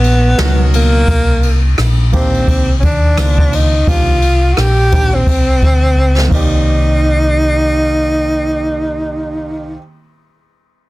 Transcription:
Already playing: A#1 B3
0.04 ride
0.38 C#2 B2 F#3 D#4 F#4 A#4, snare, hi-hat pedal, ride
0.74 A#3, ride
1.08 C2, kick, ride
1.43 ride
1.78 A#1, cross-stick, hi-hat pedal, ride
2.12 D#3 A#3 C4 D4 G4, kick, ride
2.34 ride
2.48 C2, kick, ride
2.80 D#2 C#4, kick, ride
2.85 D4
3.17 C#2 D#3 A#3 C4 D4 D#4, cross-stick, hi-hat pedal, ride
3.25 F4
3.38 kick
3.53 D#4, ride
3.87 C2 D#3 A#3 C4 D4 F4 G4, kick, ride
4.22 ride
4.53 F#4, cross-stick
4.57 A#1 G4, hi-hat pedal, ride
4.92 D#3 A#3 C4 D4 G4, kick, ride
5.15 C4
5.27 C2, kick, ride
5.62 D2, kick, ride
5.97 C#2
6.18 snare
6.28 C2 D#3 A#3 C4, kick, ride
6.33 D#4 G4 D5

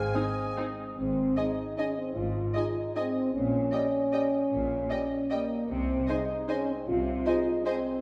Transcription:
Already playing: C4 G#4 F5 G#5
0.14 D#3 C4 D#4 D#5
0.57 D#3 G#3 C4 D#4
0.98 G#1 G#2 C4
1.36 G#3 D#4 D#5 G#5
1.77 G#3 C#4 D#5 G#5
1.97 C4
2.16 G#1 G#2 F4
2.54 G#3 D#4 D#5 G#5
2.95 G#3 C4 D#5 G#5
3.33 A#1 A#2 C#4
3.72 G3 D#5 G5
4.12 G3 D#5 G5
4.52 A#1 A#2
4.90 G3 D#5 G5
5.30 G3 A#3 D#5 G5
5.69 C2 C3 C4
6.08 G#3 D#4 C5 D#5 G#5
6.48 G#3 C#4 C5 D#5 G#5
6.69 C4
6.87 C2 C3 F4
7.26 G#3 D#4 C5 D#5 G#5
7.64 G#3 C4 C5 D#5 G#5

